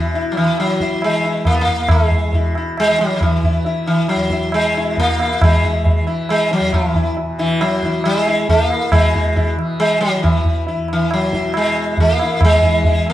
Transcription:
Already playing: tanpura E2 B2 E3, sitar E3 E4
0.14 sitar E4, tabla tin
0.32 sitar F#3
0.36 sitar E3, tabla na
0.45 tanpura E3
0.58 sitar F#3, tabla na
0.80 sitar E4, tabla ke
1.02 tanpura E3, sitar G#3, tabla na
1.24 sitar E4, tabla na
1.45 sitar A#3, tabla na, tabla ge
1.54 sitar B3
1.61 sitar A#3
1.67 tanpura E2, tabla ge
1.88 sitar G#3, tabla na, tabla ge
2.11 tabla ge
2.27 tanpura B2
2.33 sitar E4, tabla tin, tabla ge
2.55 sitar E4, tabla na
2.77 sitar G#3, tabla na
2.88 tanpura E3
2.99 sitar F#3, tabla te
3.16 sitar F#3
3.21 sitar E3, tabla na, tabla ge
3.43 sitar E4, tabla ge
3.50 tanpura E3
3.65 sitar E4, tabla tin
3.87 sitar E3, tabla na
4.08 sitar F#3, tabla na
4.15 tanpura E2
4.30 sitar E4, tabla ke
4.52 sitar G#3, tabla na
4.75 tanpura B2, sitar E4, tabla na
4.97 sitar A#3, tabla tin, tabla ge
5.20 sitar E4, tabla na
5.39 tanpura E3, tabla na, tabla ge
5.44 sitar G#3
5.63 sitar E4, tabla ge
5.85 tabla tin, tabla ge
6.01 tanpura E3
6.07 sitar E4, tabla na
6.29 sitar G#3, tabla na
6.51 sitar F#3, tabla te
6.60 tanpura E2
6.73 sitar E3, tabla na, tabla ge
6.94 sitar E4, tabla ge
7.17 tabla tin
7.23 tanpura B2
7.39 sitar E3 E4, tabla na
7.61 sitar F#3 E4, tabla na
7.83 tanpura E3, sitar E4, tabla ke
8.04 sitar G3 E4, tabla na
8.20 sitar G#3
8.27 sitar E4, tabla na
8.45 tanpura E3
8.49 sitar A#3 E4, tabla tin, tabla ge
8.70 tabla na
8.92 tanpura B2, sitar G#3, tabla na, tabla ge
9.15 sitar E4, tabla ge
9.36 sitar E4, tabla tin, tabla ge
9.56 tanpura E3, tabla na
9.80 sitar G#3, tabla na
10.01 sitar F#3, tabla te
10.15 tanpura E3
10.23 sitar E3, tabla na, tabla ge
10.45 tabla ge
10.67 sitar E4, tabla tin
10.76 tanpura E2
10.88 tabla na
10.93 sitar E3
11.11 sitar F#3, tabla na
11.33 tanpura B2, sitar E4, tabla ke
11.54 sitar G#3, tabla na
11.76 tabla na
11.97 tanpura E3, sitar A#3, tabla tin, tabla ge
12.19 sitar E4, tabla na
12.41 sitar G#3, tabla na, tabla ge
12.62 tanpura E3, sitar E4, tabla ge
12.84 sitar E4, tabla tin, tabla ge
13.06 sitar A#3, tabla na

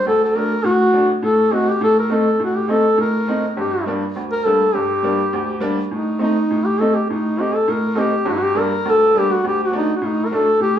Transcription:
0.06 upright piano D2, duduk A4
0.24 duduk A4
0.28 duduk A4
0.35 upright piano F#3 A3 D4, duduk A#4
0.64 upright piano A2, duduk F#4
0.93 upright piano F#3 A3 D4
1.22 upright piano A2, duduk A4
1.51 upright piano A3 C4 D#4, duduk F#4
1.70 duduk G4
1.81 upright piano A2, duduk A4
1.99 duduk A#4
2.09 upright piano A3 C4 D#4
2.14 duduk A4
2.39 upright piano A2
2.44 duduk F#4
2.57 duduk G4
2.68 upright piano A3 C4 D#4, duduk A4
2.97 upright piano A2, duduk A#4
3.27 upright piano A3 C4 D#4
3.57 upright piano G2, duduk G4
3.86 upright piano G3 A#3 D4
4.16 upright piano D2
4.32 duduk A#4
4.45 upright piano G3 A#3 D4, duduk A4
4.74 upright piano G2, duduk G4
5.03 upright piano G3 A#3 D4
5.33 upright piano D2
5.60 upright piano G3 A#3 D4
5.91 upright piano A2, duduk D#4
6.19 upright piano A3 C4 D#4
6.23 duduk D#4
6.50 upright piano A2
6.66 duduk G4
6.80 upright piano A3 C4 D#4, duduk A4
6.94 duduk G4
7.10 upright piano A2, duduk D#4
7.37 upright piano A3 C4 D#4
7.41 duduk G4
7.55 duduk A4
7.68 upright piano A2, duduk A#4
7.95 upright piano A3 C4 D#4
7.99 duduk G4
8.25 upright piano G2, duduk F#4
8.32 duduk D#4
8.37 duduk F#4
8.43 duduk G4
8.55 upright piano G3 A#3 D4
8.59 duduk A#4
8.85 upright piano D2
8.90 duduk A4
9.15 upright piano G3 A#3 D4, duduk G4
9.33 duduk F#4
9.44 upright piano D2, duduk G4
9.63 duduk F#4
9.72 upright piano F#3 A3 D4
9.77 duduk D#4
9.96 duduk F#4
10.01 upright piano A2
10.06 duduk D#4
10.25 duduk A#4
10.31 upright piano F#3 A3 D4, duduk A4
10.60 upright piano A2, duduk G4

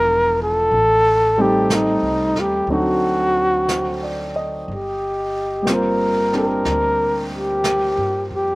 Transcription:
Already playing: upright bass E1, grand piano F3 B3 D4 E4 F4, trumpet A#4
0.43 trumpet A4
0.71 upright bass A1, brush sweep
1.38 grand piano G3 A3 C4 D#4 A4
1.42 trumpet G4
1.70 brush sweep, snare, hi-hat pedal
1.74 trumpet D#4
2.02 upright bass C2
2.35 upright bass D#2, snare
2.40 trumpet G4
2.67 upright bass D2, grand piano F#3 C4 D4 D#4 A4, brush sweep
2.72 trumpet F#4
3.69 grand piano C5, brush sweep, snare, hi-hat pedal
4.03 grand piano D5
4.36 grand piano D#5
4.68 upright bass G1, brush sweep
4.75 trumpet G4
5.62 grand piano G3 A#3
5.67 grand piano C4, brush sweep, snare, hi-hat pedal
5.71 grand piano F4 C5, trumpet A#4
6.33 grand piano C4 D4 G4 A#4, snare
6.38 trumpet A#4
6.65 upright bass D2, brush sweep, snare
7.36 trumpet G4
7.64 brush sweep, snare, hi-hat pedal
7.98 upright bass G2
8.31 upright bass F2
8.35 trumpet G4

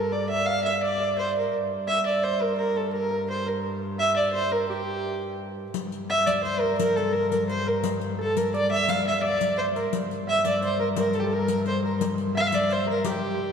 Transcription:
Already playing: viola da gamba G2, fiddle A#4, harp A#4 C5
0.12 harp D5, fiddle D5
0.29 harp E5, fiddle E5
0.46 harp F5, fiddle F5
0.63 harp E5, fiddle E5
0.82 harp D5, fiddle D5
1.00 harp D5
1.17 harp C5, fiddle C5
1.38 fiddle A#4
1.54 viola da gamba G2
1.87 harp E5, fiddle E5
2.05 harp D5, fiddle D5
2.24 fiddle C5, harp C5
2.41 harp A#4, fiddle A#4
2.58 fiddle A#4, harp A#4
2.76 harp A4, fiddle A4
2.93 fiddle A#4, harp A#4
3.10 harp A#4
3.28 harp C5, fiddle C5
3.46 harp A#4, fiddle A#4
3.98 harp E5, fiddle E5
4.17 fiddle D5
4.33 fiddle C5, harp C5
4.51 harp A#4, fiddle A#4
4.69 fiddle G4, harp G4
5.74 viola da gamba G2, riq
5.92 riq
6.09 harp E5, fiddle E5
6.26 harp D5, fiddle D5, riq
6.43 fiddle C5, harp C5, riq
6.60 fiddle A#4, harp A#4
6.78 fiddle A#4, harp A#4, riq
6.96 fiddle A4, harp A4, riq
7.13 fiddle A#4, harp A#4
7.31 fiddle A#4, harp A#4, riq
7.49 fiddle C5, harp C5, riq
7.66 harp A#4, fiddle A#4
7.83 riq
8.01 riq
8.18 harp A4, fiddle A4
8.37 harp A#4, fiddle A#4, riq
8.54 harp D5, fiddle D5, riq
8.70 harp E5, fiddle E5
8.88 harp F5, fiddle F5, riq
9.05 harp E5, fiddle E5
9.22 harp D5, fiddle D5
9.40 harp D5, riq
9.57 harp C5, fiddle C5
9.76 harp A#4, fiddle A#4, riq
9.92 viola da gamba G2, riq
10.11 riq
10.27 harp E5, fiddle E5
10.45 harp D5, fiddle D5, riq
10.61 harp C5, fiddle C5, riq
10.79 harp A#4, fiddle A#4
10.96 harp A#4, fiddle A#4, riq
11.13 harp A4, fiddle A4, riq
11.20 fiddle G4 A4, harp A4
11.32 harp A#4, fiddle A#4
11.48 riq
11.66 harp C5, fiddle C5, riq
11.84 harp A#4, fiddle A#4
12.01 riq
12.18 riq
12.35 harp E5, fiddle E5
12.41 fiddle F5
12.47 fiddle E5
12.52 fiddle D5, riq
12.69 harp C5, fiddle C5, riq
12.86 harp A#4, fiddle A#4
13.04 harp G4, fiddle G4, riq

